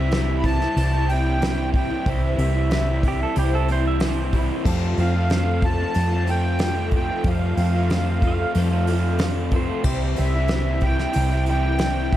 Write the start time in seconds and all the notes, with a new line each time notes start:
Already playing: C2 C3 E3 C4 E4 G4 C5 E5 G5
0.00 G3
0.11 C3 E3 G3 C4 E4 C5, snare, open hi-hat
0.37 B5
0.44 E3 G3 C4 E4 C5 A5, kick, open hi-hat
0.60 G3 C4 E4, snare
0.77 C2 C3 G3 C4 E4 C5, open hi-hat
0.93 G3 C4 E4
1.08 E3 G3 C4 E4 C5 G5, open hi-hat
1.42 C3 E3 G3 C4 E4 C5, snare, open hi-hat
1.72 E3 E4 C5, kick, open hi-hat
1.76 G3 C4 E4 G5
1.90 G3 C4 E4
2.06 C2 C3 E3 G3 C4 E4 G4 C5 E5 G5, kick, open hi-hat
2.37 C2 E3 G3 C4 G4 C5 E5 G5, open hi-hat
2.41 E4
2.55 G3 C4 E4
2.70 C3 E3 G3 C4 E4 C5, snare, open hi-hat
3.02 E3 G3 C4 E4 C5, kick, open hi-hat
3.08 G4
3.20 G3 C4 E4 A4
3.35 C2 C3 G3 C4 E4 G4 C5, open hi-hat
3.53 G3 C4 E4 A4
3.68 E3 G3 C4 E4 C5, open hi-hat
3.87 E5
4.00 C3 E3 G3 C4 E4 C5, snare, open hi-hat
4.32 E3 G3 C4 E4 C5, kick, open hi-hat
4.50 G3 C4 E4
4.65 F2 C3 F3 G3 A3 C4 F4 A4 C5 F5 G5, kick, crash
4.97 F2 F3 A3 C4 A4 C5 F5 G5, open hi-hat
5.02 F4
5.15 F3 A3 C4 F4
5.30 F2 C3 F3 G3 A3 C4 A4, snare, open hi-hat
5.34 F4
5.62 F3 A3 C4 A4 A5, kick, open hi-hat
5.67 F4
5.80 F3 A3 C4 F4
5.94 F2 F3 G3 C4 F4 A4, open hi-hat
6.12 F3 A3 C4 F4
6.27 F3 A3 C4 A4 G5, open hi-hat
6.32 F4
6.59 F2 C3 F3 G3 A3 C4 F4 A4, snare, open hi-hat
6.91 F3 A3 C4 A4, kick, open hi-hat
6.96 F4 G5
7.08 F3 A3 C4 F4
7.24 F2 C3 F3 G3 A3 C4 A4 C5 F5 G5, kick, open hi-hat
7.28 F4
7.57 F2 F3 A3 C4 F4 A4 C5 F5 G5, open hi-hat
7.74 F3 A3 C4 F4
7.89 F2 C3 F3 G3 A3 C4 F4 A4, snare, open hi-hat
8.22 F3 A3 C4 A4, kick, open hi-hat
8.26 F4 F5
8.39 F3 A3 C4 F4
8.55 F2 F3 G3 C4 F4 A4, open hi-hat
8.71 F3 A3 C4 F4
8.87 F3 A3 C4 F4 A4, open hi-hat
9.19 F2 C3 F3 G3 A3 C4 F4 A4, snare, open hi-hat
9.51 F3 A3 C4 A4, kick, open hi-hat
9.56 F4 C5
9.68 F3 A3 C4 F4
9.83 C2 C3 E3 G3 C4 E4 G4 C5 E5 G5, kick, crash
10.16 C2 E3 G3 C4 G4 C5 E5 G5, open hi-hat
10.20 E4
10.34 G3 C4 E4
10.48 C3 E3 G3 C4, snare, open hi-hat
10.52 E4 C5
10.81 E3 G3 C5 G5, kick, open hi-hat
10.86 C4 E4
10.99 G3 C4 E4, snare
11.13 C2 C3 G3 C4 E4 C5, open hi-hat
11.32 G3 C4 E4
11.46 E3 G3 C5 G5, open hi-hat
11.50 C4 E4
11.78 C3 E3 G3, snare, open hi-hat
11.83 C4 E4 C5
12.12 E3 C5, kick, open hi-hat